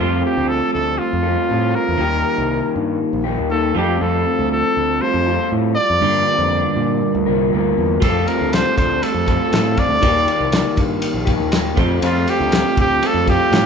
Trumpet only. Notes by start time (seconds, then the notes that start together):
0.00 F4
0.26 G4
0.49 A4
0.73 A4
0.98 F4
1.75 A#4
3.51 A4
3.78 G4
4.02 A4
4.52 A4
5.01 C5
5.75 D5
8.03 A4
8.28 A#4
8.54 C5
8.78 C5
9.03 A4
9.79 D5
12.05 F4
12.30 G4
12.81 G4
13.07 A4
13.30 G4